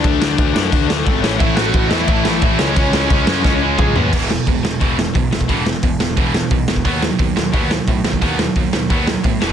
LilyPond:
<<
  \new Staff \with { instrumentName = "Lead electric guitar" } { \time 4/4 \key e \major \tempo 4 = 176 <d' d''>2~ <d' d''>8 r8 <a a'>8 <cis' cis''>8 | <e' e''>8 <fis' fis''>4 <e' e''>4. <e' e''>8 <cis' cis''>8~ | <cis' cis''>2~ <cis' cis''>8 r8 <gis gis'>8 <b b'>8 | r1 |
r1 | r1 | r1 | }
  \new Staff \with { instrumentName = "Overdriven electric guitar" } { \clef bass \time 4/4 \key e \major <d a d'>8 <d a d'>8 <d a d'>8 <d a d'>8 <d a d'>8 <d a d'>8 <d a d'>8 <a, e a>8 | <a, e a>8 <a, e a>8 <a, e a>8 <a, e a>8 <a, e a>8 <a, e a>8 <a, e a>8 <cis gis cis'>8 | <cis gis cis'>8 <cis gis cis'>8 <cis gis cis'>8 <cis gis cis'>8 <cis gis cis'>8 <cis gis cis'>8 <cis gis cis'>8 <cis gis cis'>8 | <e, b, e>8 <e, b,>8 <e, b,>8 <e, b,>8 <e, b, e>8 <e, b,>8 <e, b,>8 <e, b,>8 |
<e, b, e>8 <e, b,>8 <e, b,>8 <e, b,>8 <e, b, e>8 <e, b,>8 <e, b,>8 <e, b,>8 | <b, fis b>8 <b, fis>8 <b, fis>8 <b, fis>8 <b, fis b>8 <b, fis>8 <b, fis>8 <b, fis>8 | <b, fis b>8 <b, fis>8 <b, fis>8 <b, fis>8 <b, fis b>8 <b, fis>8 <b, fis>8 <e, b, e>8 | }
  \new Staff \with { instrumentName = "Distorted electric guitar" } { \clef bass \time 4/4 \key e \major r1 | <a, e a>8 <a, e a>8 <a, e a>8 <a, e a>8 <a, e a>8 <a, e a>8 <a, e a>8 <cis gis cis'>8 | <cis gis cis'>8 <cis gis cis'>8 <cis gis cis'>8 <cis gis cis'>8 <cis gis cis'>8 <cis gis cis'>8 <cis gis cis'>8 <cis gis cis'>8 | <e, b, e>8 <e, b,>8 <e, b,>8 <e, b,>8 <e, b, e>8 <e, b,>8 <e, b,>8 <e, b,>8 |
<e, b, e>8 <e, b,>8 <e, b,>8 <e, b,>8 <e, b, e>8 <e, b,>8 <e, b,>8 <e, b,>8 | <b, fis b>8 <b, fis>8 <b, fis>8 <b, fis>8 <b, fis b>8 <b, fis>8 <b, fis>8 <b, fis>8 | <b, fis b>8 <b, fis>8 <b, fis>8 <b, fis>8 <b, fis b>8 <b, fis>8 <b, fis>8 <e, b, e>8 | }
  \new Staff \with { instrumentName = "Picked electric bass" } { \clef bass \time 4/4 \key e \major d,8 d,8 d,8 fis,8 d,4 gis,,8 a,,8 | a,,4 a,,8 e,8 a,,8 a,,8 a,,8 cis,8 | cis,8 cis,8 cis,8 fis,8 cis,4 cis,8 dis,8 | e,,4 e,,8 e,,8 e,,4 b,,8 e,,8 |
e,,4 e,,8 e,,8 e,,4 b,,8 e,,8 | dis,4 dis,8 dis,8 dis,4 a,8 dis,8 | dis,4 dis,8 dis,8 dis,4 a,8 e,,8 | }
  \new DrumStaff \with { instrumentName = "Drums" } \drummode { \time 4/4 <cymc bd>8 sn8 <cymc bd>8 sn8 <cymc bd>8 sn8 <cymc bd>8 sn8 | <cymc bd>8 sn8 <cymc bd>8 sn8 <cymc bd>8 sn8 <cymc bd>8 sn8 | <cymc bd>8 sn8 <cymc bd>8 sn8 <bd sn>4 <bd toml>8 tomfh8 | <cymc bd>8 sn8 <hho bd>8 sn8 <hho bd>8 sn8 <hho bd>8 sn16 bd16 |
<hho bd>8 sn8 <hho bd>8 sn8 <hho bd>8 sn8 <hho bd>8 sn16 bd16 | <hho bd>8 sn8 <hho bd>8 sn8 <hho bd>8 sn8 <hho bd>8 sn16 bd16 | <hho bd>8 sn8 <hho bd>8 sn8 <hho bd>8 sn8 <hho bd>8 sn8 | }
>>